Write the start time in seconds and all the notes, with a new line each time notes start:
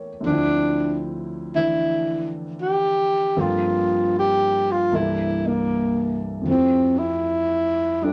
Already playing: A2 E3 A#3 C#4 G4 A4 A#4 C#5
0.21 D2 D3
0.25 F3 C4 D4
0.31 E4
1.55 D3 E3 A3 D4 E4
2.61 G4
3.37 G2 F3 A#3 C4 F4 A4
4.19 G4
4.71 F4
4.91 C2 G2 E3 A#3 D4 A4
4.96 E4
5.47 A#3
6.41 F2 F3
6.48 A3 C4 E4
6.53 G4
6.99 E4
8.02 G3 C4 D4 F4 A4